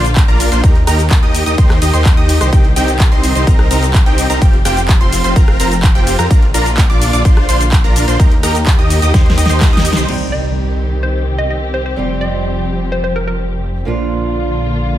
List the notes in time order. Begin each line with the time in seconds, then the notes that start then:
Already playing: A#1 D3 A#3 F4
0.05 closed hi-hat, shaker
0.16 kick, clap, closed hi-hat, ride, shaker
0.28 A#1 D4 F4 A#4 A#5, closed hi-hat
0.40 open hi-hat, ride, shaker
0.52 A#1 D4 F4 C5 C6, closed hi-hat, shaker
0.64 D#2 D#3 D#4 G4 A#4 A#5, kick, closed hi-hat, ride, shaker
0.76 closed hi-hat
0.87 D#2 D#4 G4 A#4 A#5, cross-stick, open hi-hat, ride, shaker
0.99 closed hi-hat, shaker
1.11 kick, clap, closed hi-hat, ride, shaker
1.23 D#2 D#4 G4 D#5 D#6, closed hi-hat
1.35 open hi-hat, ride, shaker
1.46 D#2 D#4 G4 D#5 D#6, closed hi-hat, shaker
1.58 D#2 D#4 G4 C5 C6, kick, closed hi-hat, ride, shaker
1.70 cross-stick, clap, closed hi-hat
1.82 D#2 D#4 G4 D#5 D#6, open hi-hat, ride, shaker
1.93 D#2 D#4 G4 C5 C6, closed hi-hat, shaker
2.05 kick, clap, closed hi-hat, ride, shaker
2.17 D#2 D#4 G4 D#5 D#6, closed hi-hat
2.29 open hi-hat, ride, shaker
2.41 C2 D#4 G4 C5 C6, cross-stick, closed hi-hat, shaker
2.53 C2 C4 D#4 G4 G5, kick, closed hi-hat, ride, shaker
2.65 closed hi-hat
2.76 C2 C4 D#4 G4 G5, open hi-hat, ride, shaker
2.88 closed hi-hat, shaker
3.00 kick, clap, closed hi-hat, ride, shaker
3.12 C2 C4 D#4 C5 C6, closed hi-hat
3.24 open hi-hat, ride, shaker
3.35 C2 C4 D#4 C5 C6, closed hi-hat, shaker
3.47 C2 C4 D#4 A#4 A#5, kick, closed hi-hat, ride, shaker
3.59 cross-stick, closed hi-hat
3.71 C2 C4 D#4 A#4 A#5, open hi-hat, ride, shaker
3.83 closed hi-hat, shaker
3.94 kick, clap, closed hi-hat, ride, shaker
4.06 C2 C4 D#4 G4 G5, closed hi-hat
4.18 open hi-hat, ride, shaker
4.30 C2 C4 D#4 A#4 A#5, closed hi-hat, shaker
4.41 F1 F3 C4 F4 G4 G5, kick, closed hi-hat, ride, shaker
4.53 closed hi-hat
4.65 F1 C4 F4 G4 G5, cross-stick, open hi-hat, ride, shaker
4.77 closed hi-hat, shaker
4.89 kick, clap, closed hi-hat, ride, shaker
5.01 F1 C4 F4 C5 C6, closed hi-hat
5.12 open hi-hat, ride, shaker
5.24 F1 C4 F4 C5 C6, closed hi-hat, shaker
5.36 F1 C4 F4 A#4 A#5, kick, closed hi-hat, ride, shaker
5.48 cross-stick, closed hi-hat
5.60 F1 C4 F4 A#4 A#5, open hi-hat, ride, shaker
5.72 closed hi-hat, shaker
5.83 kick, clap, closed hi-hat, ride, shaker
5.95 F1 C4 F4 G4 G5, closed hi-hat
6.07 open hi-hat, ride, shaker
6.19 F2 C4 F4 A#4 A#5, cross-stick, closed hi-hat, shaker
6.30 A#1 D3 A#3 D4 F4 A#4 A#5, kick, closed hi-hat, ride, shaker
6.42 closed hi-hat
6.54 A#1 D4 F4 A#4 A#5, open hi-hat, ride, shaker
6.66 closed hi-hat, shaker
6.78 kick, clap, closed hi-hat, ride, shaker
6.90 A#1 D4 F4 D5 D6, closed hi-hat
7.02 open hi-hat, ride, shaker
7.13 A#1 D4 F4 D5 D6, closed hi-hat, shaker
7.25 A#1 D4 F4 C5 C6, kick, closed hi-hat, ride, shaker
7.37 cross-stick, closed hi-hat
7.49 A#1 D4 F4 C5 C6, open hi-hat, ride, shaker
7.61 closed hi-hat, shaker
7.72 kick, clap, closed hi-hat, ride, shaker
7.84 A#1 D4 F4 A#4 A#5, closed hi-hat
7.96 open hi-hat, ride, shaker
8.08 A#1 D4 F4 C5 C6, closed hi-hat, shaker
8.19 D#2 D#3 D#4 G4 A#4 A#5, kick, closed hi-hat, ride, shaker
8.31 closed hi-hat
8.43 D#2 D#4 G4 A#4 A#5, cross-stick, open hi-hat, ride, shaker
8.55 closed hi-hat, shaker
8.67 kick, clap, closed hi-hat, ride, shaker
8.79 D#2 D#4 G4 D#5 D#6, closed hi-hat
8.90 open hi-hat, ride, shaker
9.02 D#2 D#4 G4 D#5 D#6, closed hi-hat, shaker
9.14 D#2 D#4 G4 C5 C6, kick, snare, closed hi-hat, ride, shaker
9.26 snare, closed hi-hat
9.38 D#2 D#4 G4 D#5 D#6, open hi-hat, ride, shaker
9.46 D#2 D#4 G4 C5 C6, snare, closed hi-hat
9.50 shaker
9.61 kick, snare, clap, closed hi-hat, ride, shaker
9.73 D#2 D#4 G4 D#5 D#6, closed hi-hat
9.77 snare
9.85 open hi-hat, ride, shaker
9.93 D#4 G4 C5 C6, snare
9.97 C2, closed hi-hat, shaker
10.07 C2 D#3 G3 C4 D#4 G4, crash, impact
10.32 D#5
11.03 C5
11.38 D#5
11.50 D#5
11.74 C5
11.86 C5
11.96 F1 F3 G3 C4 F4 G4
12.21 D#5
12.92 C5
13.04 C5
13.16 A#4
13.27 A#4
13.85 A#1 D3 F3 A#3 D4 F4